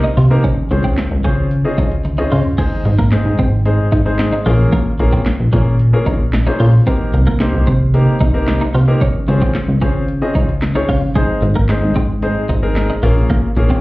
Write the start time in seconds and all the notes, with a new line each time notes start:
0.04 D#4
0.17 C3 F4, open hi-hat
0.30 A#3 C4 D#4 G4 A#4
0.44 C#4, kick, closed hi-hat
0.71 C#2 C4 C#4 F4 G#4 C5, muted clean electric guitar stroke, closed hi-hat
0.84 C4, kick
0.98 snare, clap, closed hi-hat
1.11 C#2
1.24 C#3 C4 C#4 F4 G#4 C5, kick, closed hi-hat
1.51 closed hi-hat
1.64 C4 C#4 F4 G#4 D#5
1.78 C#2 D#4, kick, closed hi-hat
1.91 closed hi-hat
2.05 muted clean electric guitar stroke, closed hi-hat, high tom
2.18 C4 C#4 D#4 F4 G#4 D#5, closed hi-hat
2.32 C#3 F4, mid tom, open hi-hat
2.45 floor tom
2.58 G#3 C4 D#4 G#4 C5, kick, closed hi-hat, crash
2.85 G#2, muted clean electric guitar stroke, closed hi-hat
2.99 A#3, kick
3.12 G#3 C4 D#4 G#4 C5, snare, clap, closed hi-hat
3.26 G#2
3.39 G#2 C4, kick, closed hi-hat
3.65 G#3 C4 D#4 G#4 C5, closed hi-hat
3.92 G#2 D#4, kick, closed hi-hat
4.05 G#3 C4 D#4 G#4 C5
4.19 muted clean electric guitar stroke, snare, clap, closed hi-hat
4.33 D#4
4.46 A#1 A#3 C#4 F4 G#4 A#4, open hi-hat
4.73 A#3, kick, closed hi-hat
4.99 A#1 A#3 C#4 F4 G#4 A#4, muted clean electric guitar stroke, closed hi-hat
5.13 C4, kick
5.26 snare, clap, closed hi-hat
5.40 A#1
5.53 A#2 A#3 C#4 F4 G#4 A#4, kick, closed hi-hat
5.79 closed hi-hat
5.93 A#3 C#4 F4 G#4 A#4
6.06 A#1 D#4, kick, closed hi-hat
6.33 muted clean electric guitar stroke, snare, clap, closed hi-hat
6.46 A#3 C#4 D#4 F4 G#4 C5
6.60 A#2 F4, open hi-hat
6.87 A#3 C4 D#4 G4 A#4, kick, closed hi-hat
7.14 C2, muted clean electric guitar stroke, closed hi-hat
7.27 A#3, kick
7.40 A#3 C4 D#4 G4 C5, snare, clap, closed hi-hat
7.54 C2
7.67 C3 C4, kick, closed hi-hat
7.94 A#3 C4 D#4 G4 A#4, closed hi-hat
8.21 C2 D#4, kick, closed hi-hat
8.34 A#3 C4 D#4 G4 A#4
8.48 muted clean electric guitar stroke, snare, clap, closed hi-hat
8.61 D#4
8.74 C3 F4, open hi-hat
8.88 A#3 C4 D#4 G4 A#4
9.01 C#4, kick, closed hi-hat
9.28 C#2 C4 C#4 F4 G#4 C5, muted clean electric guitar stroke, closed hi-hat
9.42 C4, kick
9.55 snare, clap, closed hi-hat
9.68 C#2
9.82 C#3 C4 C#4 F4 G#4 C5, kick, closed hi-hat
10.08 closed hi-hat
10.22 C4 C#4 F4 G#4 D#5
10.35 C#2 D#4, kick, closed hi-hat
10.49 closed hi-hat
10.62 muted clean electric guitar stroke, snare, clap, closed hi-hat
10.75 C4 C#4 D#4 F4 G#4 C#5, closed hi-hat
10.89 C#3 F4, kick, open hi-hat
11.15 G#3 C4 D#4 G#4 C5, kick, closed hi-hat
11.42 G#1, muted clean electric guitar stroke, closed hi-hat
11.56 A#3, kick
11.69 G#3 C4 D#4 G#4 C5, snare, clap, closed hi-hat
11.82 G#1
11.96 G#2 C4, kick, closed hi-hat
12.22 G#3 C4 D#4 G#4 C5, closed hi-hat
12.49 G#1 D#4, kick, closed hi-hat
12.62 G#3 C4 D#4 G#4 A#4
12.76 muted clean electric guitar stroke, snare, clap, closed hi-hat
12.90 D#4
13.03 A#1 A#3 C#4 F4 G#4 A#4, open hi-hat
13.30 A#3, kick, closed hi-hat
13.56 A#1 A#3 C#4 F4 G#4 A#4, muted clean electric guitar stroke, closed hi-hat
13.70 C4, kick